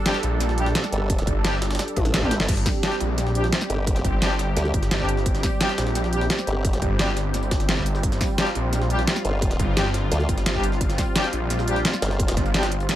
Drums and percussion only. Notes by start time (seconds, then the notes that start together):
0.06 snare, closed hi-hat
0.14 snare
0.23 closed hi-hat
0.40 snare, closed hi-hat
0.49 snare
0.58 closed hi-hat
0.66 snare
0.75 snare, closed hi-hat
0.84 snare
0.92 closed hi-hat
1.10 kick, closed hi-hat
1.18 snare, closed hi-hat
1.27 kick, closed hi-hat
1.45 snare, closed hi-hat
1.62 snare, closed hi-hat
1.71 snare, closed hi-hat
1.75 snare, closed hi-hat
1.79 snare, closed hi-hat
1.88 closed hi-hat
1.96 kick, closed hi-hat, high tom
2.05 snare, closed hi-hat
2.14 snare, closed hi-hat
2.22 kick, mid tom
2.31 snare, closed hi-hat
2.40 snare
2.48 kick, closed hi-hat, crash
2.57 snare, closed hi-hat
2.66 kick, snare, closed hi-hat, open hi-hat
2.83 snare, closed hi-hat
2.92 snare
3.01 closed hi-hat
3.18 snare, closed hi-hat
3.27 snare
3.35 closed hi-hat
3.44 snare
3.52 snare, closed hi-hat
3.61 snare
3.70 closed hi-hat
3.87 kick, closed hi-hat
3.96 snare, closed hi-hat
4.05 kick, closed hi-hat
4.22 snare, closed hi-hat
4.39 snare, closed hi-hat
4.57 snare, closed hi-hat
4.65 closed hi-hat
4.74 kick, closed hi-hat
4.83 snare, closed hi-hat
4.91 snare, closed hi-hat
5.00 kick
5.09 closed hi-hat
5.17 snare
5.26 kick, closed hi-hat
5.35 snare, closed hi-hat
5.43 kick, snare, closed hi-hat, open hi-hat
5.61 snare, closed hi-hat
5.69 snare
5.78 snare, closed hi-hat
5.87 snare
5.95 snare, closed hi-hat
6.04 snare
6.13 closed hi-hat
6.21 snare
6.30 snare, closed hi-hat
6.39 snare
6.47 closed hi-hat
6.65 kick, closed hi-hat
6.73 snare, closed hi-hat
6.82 kick, closed hi-hat
6.99 snare, closed hi-hat
7.17 snare, closed hi-hat
7.34 snare, closed hi-hat
7.43 closed hi-hat
7.51 kick, snare, closed hi-hat
7.60 snare, closed hi-hat
7.69 snare, closed hi-hat
7.77 kick
7.86 closed hi-hat
7.95 snare
8.03 kick, closed hi-hat
8.12 snare, closed hi-hat
8.21 kick, snare, closed hi-hat, open hi-hat
8.38 snare, closed hi-hat
8.47 snare
8.55 closed hi-hat
8.73 snare, closed hi-hat
8.82 snare
8.90 closed hi-hat
8.99 snare
9.07 snare, closed hi-hat
9.16 snare
9.25 closed hi-hat
9.42 kick, closed hi-hat
9.51 snare, closed hi-hat
9.59 kick, closed hi-hat
9.77 snare, closed hi-hat
9.94 snare, closed hi-hat
10.12 snare, closed hi-hat
10.20 closed hi-hat
10.29 kick, closed hi-hat
10.38 snare, closed hi-hat
10.46 snare, closed hi-hat
10.55 kick
10.64 closed hi-hat
10.72 snare
10.81 kick, closed hi-hat
10.90 snare, closed hi-hat
10.98 kick, snare, closed hi-hat, open hi-hat
11.16 snare, closed hi-hat
11.24 snare
11.33 closed hi-hat
11.50 snare, closed hi-hat
11.59 snare
11.68 closed hi-hat
11.76 snare
11.85 snare, closed hi-hat
11.94 snare
12.02 snare, closed hi-hat
12.11 snare
12.20 kick, closed hi-hat
12.28 snare, closed hi-hat
12.37 kick, snare, closed hi-hat
12.46 closed hi-hat
12.54 snare, closed hi-hat
12.63 snare, closed hi-hat
12.72 closed hi-hat
12.80 closed hi-hat
12.89 snare, closed hi-hat